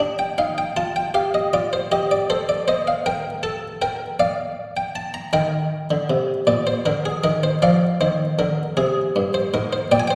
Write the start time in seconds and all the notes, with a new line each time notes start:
Already playing: D#5
0.00 D4
0.19 G5
0.38 D#4 F5
0.58 G5
0.77 F4 A5
0.96 G5
1.14 G4 F5
1.34 D#5
1.53 F4 D5
1.73 C5
1.92 G4 D#5
2.11 D5
2.30 A4 C5
2.49 D5
2.68 C5 D#5
2.87 F5
3.06 A#4 G5
3.43 A4 A5
3.82 A#4 G5
4.20 D5 F5
4.77 G5
4.96 A5
5.14 A#5
5.33 D#3 A#4 G5
5.91 D3
6.10 C3
6.47 A#2 D5
6.67 C5
6.86 D3 A#4
7.05 G#4
7.24 D#3 A#4
7.43 C5
7.62 F3 D5 F5
8.01 D#3 C5
8.39 D3 A#4
8.77 C3 G#4
9.16 G2
9.34 C5
9.54 G#2 A#4
9.73 C5
9.92 A#2 D5 G5
10.00 G#5
10.08 C5 G5